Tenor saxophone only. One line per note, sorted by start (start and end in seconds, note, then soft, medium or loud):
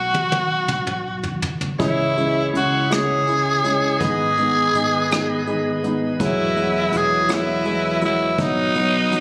0.00 1.39 F#4 medium
1.81 2.50 E4 medium
2.56 2.94 F#4 medium
2.93 4.01 G#4 medium
4.04 5.81 G#4 medium
6.25 6.99 E4 medium
6.97 7.35 G#4 medium
7.34 8.05 E4 medium
8.05 8.43 E4 medium
8.41 9.20 D#4 medium